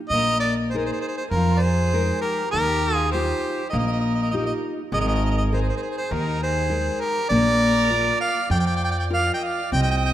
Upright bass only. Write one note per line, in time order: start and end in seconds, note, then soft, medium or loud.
0.10 0.90 A#1 medium
1.31 2.10 F2 loud
2.54 3.31 D#2 medium
3.73 4.50 A#1 loud
4.92 5.69 G#1 loud
6.11 6.88 D#2 medium
7.30 8.09 A#1 loud
8.50 9.29 F2 loud
9.72 10.13 C2 loud